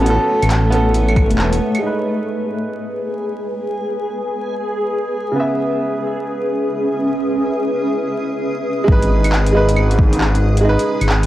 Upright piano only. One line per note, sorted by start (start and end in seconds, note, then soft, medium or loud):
0.00 0.02 B3 medium
0.00 0.68 B3 medium
0.00 0.06 C#4 medium
0.00 0.10 A4 loud
0.06 0.70 C#4 medium
0.10 0.72 A4 loud
0.70 0.82 B3 medium
0.70 0.83 C#4 medium
0.70 0.84 A4 loud
1.79 5.32 G#3 medium
1.79 5.33 D#4 medium
1.86 5.35 B4 medium
5.32 8.85 C#3 medium
5.36 8.87 B3 medium
5.40 8.89 E5 medium
8.84 9.50 G#3 loud
8.88 9.53 D#4 medium
8.92 9.55 B4 loud
9.52 9.64 G#3 loud
9.52 9.65 D#4 medium
9.57 9.66 B4 loud
10.61 11.26 G#3 loud
10.61 11.26 D#4 medium
10.69 11.26 B4 loud